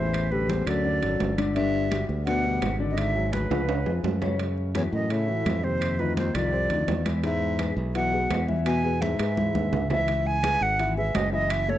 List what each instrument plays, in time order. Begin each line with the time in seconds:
Already playing: fingered electric bass A1, baritone saxophone E2, grand piano E3 E4 E5, flute C5
0.14 high conga, high timbale, claves
0.31 baritone saxophone D2, grand piano G3 G4 A4, flute B4, high conga
0.49 baritone saxophone E2, flute C5, high conga, high timbale, low timbale
0.66 fingered electric bass D2, baritone saxophone F#2, grand piano F#3 F#4 A4, flute D5, high timbale, claves
0.85 grand piano D3 D4 D5, high conga
1.02 fingered electric bass G#1, grand piano F#3 F#4 A4, high conga, high timbale
1.20 fingered electric bass G1, high conga, high timbale, low timbale
1.38 grand piano D3 D4 D5, high conga, high timbale, claves
1.55 baritone saxophone G2, grand piano D3 D4 D5, flute E5, high conga, high timbale
1.74 high conga
1.91 grand piano G3 F#4 G4, high conga, high timbale, low timbale, claves
2.09 fingered electric bass D2, high conga
2.26 baritone saxophone B2, grand piano D3 D4 D5, flute F#5, high conga, high timbale
2.44 grand piano G3 F#4 G4, high conga
2.62 fingered electric bass G#1, high conga, high timbale, low timbale, claves
2.80 grand piano D3 D4 D5
2.91 baritone saxophone F#2, flute D#5
2.97 baritone saxophone G#2, flute E5, high conga, high timbale, claves
3.15 grand piano F#3 F#4 G#4, high conga
3.33 baritone saxophone D2, flute B4, high conga, high timbale, low timbale
3.51 fingered electric bass C#2, grand piano F3 F4 G#4, high timbale, claves
3.68 grand piano C#3 C#4 C#5, high conga, high timbale
3.86 fingered electric bass F2, grand piano F3 F4 G#4, high conga, low timbale
4.04 fingered electric bass F#2, high conga, low timbale
4.21 grand piano C#3 C#4 C#5, high conga, low timbale, claves
4.39 grand piano C#3 C#4, high conga, high timbale
4.58 high conga
4.75 baritone saxophone E2, grand piano E3 E4 F#4, flute C#5, high conga, high timbale, low timbale, claves
4.93 baritone saxophone F#2, fingered electric bass A2, flute D#5, high conga
5.10 baritone saxophone A2, grand piano C#3 C#4 C#5, flute E5, high conga, high timbale
5.28 grand piano E3 E4 F#4, high conga
5.46 fingered electric bass F2, high conga, high timbale, low timbale, claves
5.63 baritone saxophone D#2, grand piano C3 C4 C5, flute C5
5.81 high conga, high timbale, claves
5.99 baritone saxophone D2, grand piano D#3 D#4 F4, flute B4, high conga
6.17 baritone saxophone D#2, flute C5, high conga, high timbale, low timbale
6.34 fingered electric bass C2, baritone saxophone F2, grand piano D#3 D#4 F4, flute D5, high timbale, claves
6.52 grand piano C3 C4 C5, high conga
6.70 fingered electric bass D2, grand piano D#3 D#4 F4, high conga, high timbale
6.88 fingered electric bass E2, high conga, high timbale, low timbale
7.05 grand piano E3 E4 E5, high conga, high timbale, claves
7.23 baritone saxophone G#2, grand piano E3 E4 E5, flute E5, high conga, high timbale
7.42 high conga
7.59 grand piano G#3 G#4 B4, high conga, high timbale, low timbale, claves
7.77 fingered electric bass B1, high conga
7.95 baritone saxophone B2, grand piano E3 E4 E5, flute F#5, high conga, high timbale
8.13 grand piano G#3 G#4 B4, high conga
8.30 fingered electric bass E2, high conga, high timbale, low timbale, claves
8.48 grand piano E3 E4 E5, high conga
8.65 baritone saxophone B2, flute G#5, high conga, high timbale, claves
8.84 grand piano G#3 G#4 B4, high conga
9.02 baritone saxophone G#2, flute E5, high conga, high timbale, low timbale
9.19 fingered electric bass G#2, grand piano G#3 G#4 B4, high timbale, claves
9.37 grand piano E3 E4 E5, high conga
9.55 fingered electric bass D#2, grand piano G#3 G#4 B4, high conga, high timbale
9.72 fingered electric bass C#2, low conga, high timbale
9.90 grand piano E3 E4 E5, flute E5, low conga, low timbale, claves
10.08 grand piano E3 E4 E5, high conga, high timbale
10.26 flute G#5, high conga
10.43 grand piano G#3 G#4 B4, high conga, high timbale, low timbale, claves
10.61 fingered electric bass G#1, flute F#5, high conga
10.79 grand piano E3 E4 E5, high conga, high timbale
10.97 grand piano G#3 G#4 B4, flute E5, high conga
11.15 fingered electric bass F#1, flute D#5, high conga, high timbale, low timbale, claves
11.33 grand piano E3 E4 E5, flute D#5
11.50 flute E5, high conga, high timbale, claves
11.68 grand piano A3 A4 C#5, flute C#5, high conga